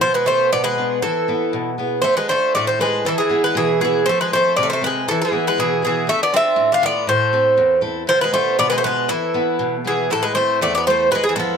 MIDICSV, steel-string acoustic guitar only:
0, 0, Header, 1, 2, 480
1, 0, Start_track
1, 0, Key_signature, 0, "minor"
1, 0, Tempo, 504202
1, 13, Time_signature, 2, 2, 24, 8
1, 11015, End_track
2, 0, Start_track
2, 0, Title_t, "Steel-string acoustic guitar"
2, 0, Program_c, 0, 25
2, 9, Note_on_c, 0, 47, 62
2, 243, Note_on_c, 0, 59, 45
2, 252, Note_on_c, 0, 62, 41
2, 255, Note_on_c, 0, 65, 55
2, 477, Note_off_c, 0, 47, 0
2, 504, Note_on_c, 0, 47, 72
2, 633, Note_off_c, 0, 59, 0
2, 635, Note_off_c, 0, 62, 0
2, 639, Note_off_c, 0, 65, 0
2, 738, Note_on_c, 0, 59, 47
2, 741, Note_on_c, 0, 62, 39
2, 747, Note_on_c, 0, 65, 41
2, 929, Note_off_c, 0, 59, 0
2, 932, Note_off_c, 0, 62, 0
2, 933, Note_off_c, 0, 65, 0
2, 965, Note_off_c, 0, 47, 0
2, 981, Note_on_c, 0, 52, 62
2, 1218, Note_on_c, 0, 59, 43
2, 1226, Note_on_c, 0, 64, 44
2, 1227, Note_on_c, 0, 71, 49
2, 1444, Note_off_c, 0, 52, 0
2, 1457, Note_on_c, 0, 47, 66
2, 1603, Note_off_c, 0, 59, 0
2, 1605, Note_off_c, 0, 71, 0
2, 1606, Note_off_c, 0, 64, 0
2, 1695, Note_on_c, 0, 59, 42
2, 1702, Note_on_c, 0, 64, 39
2, 1707, Note_on_c, 0, 68, 50
2, 1888, Note_off_c, 0, 59, 0
2, 1888, Note_off_c, 0, 64, 0
2, 1894, Note_off_c, 0, 68, 0
2, 1922, Note_off_c, 0, 47, 0
2, 1944, Note_on_c, 0, 50, 64
2, 2173, Note_on_c, 0, 62, 51
2, 2177, Note_on_c, 0, 65, 45
2, 2185, Note_on_c, 0, 69, 45
2, 2406, Note_off_c, 0, 50, 0
2, 2428, Note_on_c, 0, 45, 70
2, 2558, Note_off_c, 0, 62, 0
2, 2562, Note_off_c, 0, 65, 0
2, 2563, Note_off_c, 0, 69, 0
2, 2657, Note_on_c, 0, 62, 49
2, 2662, Note_on_c, 0, 65, 39
2, 2668, Note_on_c, 0, 69, 48
2, 2848, Note_off_c, 0, 62, 0
2, 2852, Note_off_c, 0, 65, 0
2, 2853, Note_off_c, 0, 69, 0
2, 2888, Note_off_c, 0, 45, 0
2, 2903, Note_on_c, 0, 52, 62
2, 3136, Note_on_c, 0, 59, 50
2, 3138, Note_on_c, 0, 64, 47
2, 3148, Note_on_c, 0, 68, 48
2, 3365, Note_off_c, 0, 52, 0
2, 3380, Note_on_c, 0, 47, 69
2, 3520, Note_off_c, 0, 59, 0
2, 3523, Note_off_c, 0, 64, 0
2, 3524, Note_off_c, 0, 68, 0
2, 3622, Note_on_c, 0, 59, 50
2, 3625, Note_on_c, 0, 64, 44
2, 3632, Note_on_c, 0, 68, 46
2, 3812, Note_off_c, 0, 59, 0
2, 3815, Note_off_c, 0, 64, 0
2, 3816, Note_off_c, 0, 68, 0
2, 3844, Note_off_c, 0, 47, 0
2, 3867, Note_on_c, 0, 53, 68
2, 4117, Note_on_c, 0, 60, 53
2, 4123, Note_on_c, 0, 69, 56
2, 4125, Note_on_c, 0, 65, 43
2, 4328, Note_off_c, 0, 53, 0
2, 4360, Note_on_c, 0, 48, 70
2, 4494, Note_off_c, 0, 60, 0
2, 4496, Note_off_c, 0, 65, 0
2, 4496, Note_off_c, 0, 69, 0
2, 4583, Note_on_c, 0, 60, 49
2, 4591, Note_on_c, 0, 65, 45
2, 4593, Note_on_c, 0, 69, 47
2, 4772, Note_off_c, 0, 60, 0
2, 4777, Note_off_c, 0, 69, 0
2, 4778, Note_off_c, 0, 65, 0
2, 4814, Note_off_c, 0, 48, 0
2, 4835, Note_on_c, 0, 52, 62
2, 5062, Note_on_c, 0, 59, 46
2, 5069, Note_on_c, 0, 64, 39
2, 5073, Note_on_c, 0, 68, 55
2, 5292, Note_off_c, 0, 52, 0
2, 5313, Note_on_c, 0, 47, 68
2, 5445, Note_off_c, 0, 59, 0
2, 5446, Note_off_c, 0, 64, 0
2, 5451, Note_off_c, 0, 68, 0
2, 5544, Note_on_c, 0, 59, 43
2, 5550, Note_on_c, 0, 68, 52
2, 5551, Note_on_c, 0, 64, 36
2, 5735, Note_off_c, 0, 59, 0
2, 5735, Note_off_c, 0, 64, 0
2, 5737, Note_off_c, 0, 68, 0
2, 5771, Note_off_c, 0, 47, 0
2, 5779, Note_on_c, 0, 50, 60
2, 6018, Note_on_c, 0, 62, 49
2, 6028, Note_on_c, 0, 65, 47
2, 6032, Note_on_c, 0, 69, 46
2, 6244, Note_off_c, 0, 50, 0
2, 6246, Note_on_c, 0, 45, 68
2, 6402, Note_off_c, 0, 62, 0
2, 6408, Note_off_c, 0, 65, 0
2, 6408, Note_off_c, 0, 69, 0
2, 6487, Note_on_c, 0, 62, 46
2, 6498, Note_on_c, 0, 65, 34
2, 6499, Note_on_c, 0, 69, 51
2, 6685, Note_off_c, 0, 62, 0
2, 6687, Note_off_c, 0, 65, 0
2, 6691, Note_off_c, 0, 69, 0
2, 6717, Note_off_c, 0, 45, 0
2, 6732, Note_on_c, 0, 45, 63
2, 6977, Note_on_c, 0, 60, 52
2, 6983, Note_on_c, 0, 64, 37
2, 6984, Note_on_c, 0, 69, 57
2, 7200, Note_off_c, 0, 45, 0
2, 7211, Note_on_c, 0, 40, 66
2, 7362, Note_off_c, 0, 60, 0
2, 7362, Note_off_c, 0, 64, 0
2, 7365, Note_off_c, 0, 69, 0
2, 7438, Note_on_c, 0, 60, 45
2, 7444, Note_on_c, 0, 64, 40
2, 7445, Note_on_c, 0, 69, 54
2, 7639, Note_off_c, 0, 60, 0
2, 7639, Note_off_c, 0, 64, 0
2, 7642, Note_off_c, 0, 69, 0
2, 7680, Note_off_c, 0, 40, 0
2, 7684, Note_on_c, 0, 47, 62
2, 7925, Note_on_c, 0, 59, 53
2, 7929, Note_on_c, 0, 62, 43
2, 7935, Note_on_c, 0, 65, 60
2, 8156, Note_off_c, 0, 47, 0
2, 8175, Note_on_c, 0, 47, 70
2, 8313, Note_off_c, 0, 59, 0
2, 8316, Note_off_c, 0, 62, 0
2, 8319, Note_off_c, 0, 65, 0
2, 8408, Note_on_c, 0, 59, 48
2, 8417, Note_on_c, 0, 62, 36
2, 8417, Note_on_c, 0, 65, 53
2, 8604, Note_off_c, 0, 59, 0
2, 8605, Note_off_c, 0, 62, 0
2, 8608, Note_off_c, 0, 65, 0
2, 8641, Note_off_c, 0, 47, 0
2, 8647, Note_on_c, 0, 52, 64
2, 8893, Note_on_c, 0, 59, 50
2, 8900, Note_on_c, 0, 64, 44
2, 8901, Note_on_c, 0, 71, 49
2, 9117, Note_off_c, 0, 52, 0
2, 9131, Note_on_c, 0, 47, 71
2, 9278, Note_off_c, 0, 59, 0
2, 9281, Note_off_c, 0, 71, 0
2, 9283, Note_off_c, 0, 64, 0
2, 9372, Note_on_c, 0, 59, 44
2, 9376, Note_on_c, 0, 64, 42
2, 9383, Note_on_c, 0, 68, 52
2, 9565, Note_off_c, 0, 59, 0
2, 9568, Note_off_c, 0, 64, 0
2, 9571, Note_off_c, 0, 68, 0
2, 9598, Note_off_c, 0, 47, 0
2, 9616, Note_on_c, 0, 45, 64
2, 9845, Note_on_c, 0, 57, 50
2, 9856, Note_on_c, 0, 60, 46
2, 9861, Note_on_c, 0, 64, 55
2, 10080, Note_off_c, 0, 45, 0
2, 10103, Note_on_c, 0, 40, 74
2, 10232, Note_off_c, 0, 57, 0
2, 10239, Note_off_c, 0, 60, 0
2, 10242, Note_off_c, 0, 64, 0
2, 10343, Note_on_c, 0, 60, 43
2, 10349, Note_on_c, 0, 57, 48
2, 10354, Note_on_c, 0, 64, 51
2, 10531, Note_off_c, 0, 60, 0
2, 10535, Note_off_c, 0, 57, 0
2, 10537, Note_off_c, 0, 64, 0
2, 10564, Note_off_c, 0, 40, 0
2, 10575, Note_on_c, 0, 40, 63
2, 10810, Note_on_c, 0, 56, 45
2, 10818, Note_on_c, 0, 59, 43
2, 10819, Note_on_c, 0, 64, 60
2, 11015, Note_off_c, 0, 40, 0
2, 11015, Note_off_c, 0, 56, 0
2, 11015, Note_off_c, 0, 59, 0
2, 11015, Note_off_c, 0, 64, 0
2, 11015, End_track
0, 0, End_of_file